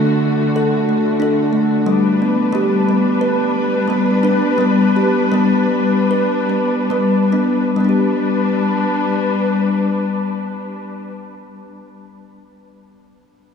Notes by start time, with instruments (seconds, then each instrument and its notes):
Already playing: string section D3 A3 F#4, kalimba A3 D4
0.56 kalimba A4
0.89 kalimba A3
1.20 kalimba D4 A4
1.53 kalimba A3
1.86 kalimba G3, string section G3 D4 B4
2.22 kalimba B3
2.52 kalimba G3 G4
2.89 kalimba B3
3.21 kalimba B4
3.88 kalimba G3 B3
4.23 kalimba D4 B4
4.58 kalimba G3 B3
4.96 kalimba G4
5.32 kalimba G3 B3
6.11 kalimba B4
6.50 kalimba B3
6.90 kalimba G3 B4
7.32 kalimba B3 D4
7.76 string section G3 D4 B4, kalimba G3
7.80 kalimba B3
7.85 kalimba D4
7.89 kalimba G4